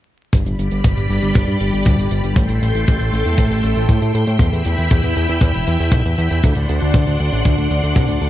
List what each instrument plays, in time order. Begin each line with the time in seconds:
0.33 analog synth bass G1, string machine G3 G4 D5 B5, kick, closed hi-hat
0.46 analog synth bass G1, closed hi-hat
0.59 analog synth bass G1, closed hi-hat
0.71 analog synth bass G1, closed hi-hat
0.84 analog synth bass G1, kick, closed hi-hat
0.97 analog synth bass G1, closed hi-hat
1.09 analog synth bass G1, closed hi-hat
1.22 analog synth bass G1, closed hi-hat
1.35 analog synth bass G1, kick, closed hi-hat
1.47 analog synth bass G2, closed hi-hat
1.60 analog synth bass G1, closed hi-hat
1.73 analog synth bass G1, closed hi-hat
1.85 analog synth bass D2, kick, closed hi-hat
1.98 analog synth bass G1, closed hi-hat
2.11 analog synth bass G1, closed hi-hat
2.24 analog synth bass G1, closed hi-hat
2.36 analog synth bass A1, string machine A3 A4 G5 C6, kick, closed hi-hat
2.49 analog synth bass A1, closed hi-hat
2.62 analog synth bass A1, closed hi-hat
2.75 analog synth bass A1, closed hi-hat
2.87 analog synth bass A1, kick, closed hi-hat
3.00 analog synth bass A1, closed hi-hat
3.13 analog synth bass A1, closed hi-hat
3.26 analog synth bass E2, closed hi-hat
3.38 analog synth bass A1, kick, closed hi-hat
3.51 analog synth bass A1, closed hi-hat
3.63 analog synth bass A1, closed hi-hat
3.76 analog synth bass A1, closed hi-hat
3.89 analog synth bass A2, kick, closed hi-hat
4.02 analog synth bass A2, closed hi-hat
4.15 analog synth bass A2, closed hi-hat
4.27 analog synth bass A2, closed hi-hat
4.39 analog synth bass E2, string machine E4 E5 B5, kick, closed hi-hat
4.53 analog synth bass E2, closed hi-hat
4.65 analog synth bass E2, closed hi-hat
4.78 analog synth bass E2, closed hi-hat
4.90 analog synth bass E2, kick, closed hi-hat
5.03 analog synth bass E2, closed hi-hat
5.16 analog synth bass E2, closed hi-hat
5.29 analog synth bass E2, closed hi-hat
5.41 analog synth bass E2, kick, closed hi-hat
5.54 analog synth bass E1, closed hi-hat
5.67 analog synth bass E2, closed hi-hat
5.80 analog synth bass E2, closed hi-hat
5.92 analog synth bass B1, kick, closed hi-hat
6.05 analog synth bass E2, closed hi-hat
6.18 analog synth bass E2, closed hi-hat
6.30 analog synth bass E2, closed hi-hat
6.43 analog synth bass D2, string machine D4 D5 F#5 C6, kick, closed hi-hat
6.55 analog synth bass D2, closed hi-hat
6.69 analog synth bass D2, closed hi-hat
6.80 analog synth bass D2, closed hi-hat
6.94 analog synth bass D2, kick, closed hi-hat
7.07 analog synth bass D2, closed hi-hat
7.19 analog synth bass D2, closed hi-hat
7.33 analog synth bass A1, closed hi-hat
7.45 analog synth bass D2, kick, closed hi-hat
7.58 analog synth bass D2, closed hi-hat
7.70 analog synth bass D2, closed hi-hat
7.83 analog synth bass D2, closed hi-hat
7.96 analog synth bass C2, kick, closed hi-hat
8.08 analog synth bass D2, closed hi-hat
8.21 analog synth bass D2, closed hi-hat